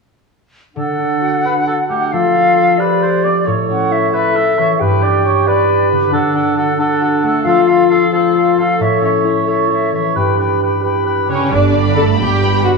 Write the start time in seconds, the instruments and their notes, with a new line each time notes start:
0.75 harp D3, clarinet D4, oboe A4, flute F#5
0.99 harp D4
1.21 harp F#4
1.45 clarinet D4, harp A4, oboe B4
1.66 harp F#4, oboe A4
1.89 harp A3, oboe G4
2.12 harp F3, clarinet F4, oboe A4, flute F5
2.35 harp F4
2.57 harp A4
2.78 clarinet G4, oboe B4, harp C5, flute D5
3.02 harp A4, oboe C5
3.24 harp C4, oboe D5
3.45 harp A2, clarinet A4, oboe C#5, flute C#5
3.70 harp C#4, flute F#5
3.91 harp E4, flute E5
4.13 harp A4, oboe B4, flute E5
4.35 harp E4, oboe A4
4.58 harp E3, oboe C#5
4.79 harp G2, clarinet G4, oboe B4, flute G5
5.02 harp D4, oboe D5
5.25 harp G4, oboe C#5
5.47 harp B4, oboe B4, flute D5
5.69 harp G4
5.92 harp D3
6.12 harp D3, clarinet D4, oboe A4, flute F#5
6.34 harp D4, oboe A4, flute F#5
6.57 harp F#4, oboe A4, flute F#5
6.78 clarinet D4, harp A4, oboe A4, flute F#5
7.00 harp F#4, oboe A4, flute F#5
7.21 harp A3, oboe A4, flute F#5
7.43 harp F3, clarinet F4, flute F5
7.48 oboe A4
7.65 harp F4, oboe A4, flute F5
7.88 harp A4, oboe A4, flute F5
8.11 clarinet F4, oboe A4, harp C5, flute F5
8.33 harp A4, oboe A4, flute F5
8.56 harp C4, oboe A4, flute F5
8.78 harp A2, clarinet A4, oboe C#5, flute E5
9.01 harp C#4, oboe C#5, flute E5
9.24 harp E4, oboe C#5, flute E5
9.47 harp A4, clarinet A4, oboe C#5, flute E5
9.70 harp E4, oboe C#5, flute E5
9.92 harp E3, oboe C#5, flute E5
10.15 harp G2, clarinet G4, oboe B4, flute G5
10.38 harp D4, oboe B4, flute G5
10.61 harp G4, oboe B4, flute G5
10.81 clarinet G4, oboe B4, harp B4, flute G5
11.06 harp G4, oboe B4, flute G5
11.28 french horn section C#3, harp D3, viola section C#4, oboe B4, violin section C#5, flute G5
11.50 double bass section G1, harp G2, cello section G2, french horn section D3, viola section D4, violin section D5
11.73 harp D3, violin section B5
11.95 french horn section A3, harp B3, viola section A4, violin section A5
12.19 double bass section G1, cello section G2, french horn section G3, harp G4, viola section G4, violin section G5
12.40 harp B4, violin section B5
12.63 french horn section F#3, viola section F#4, harp G4, violin section F#5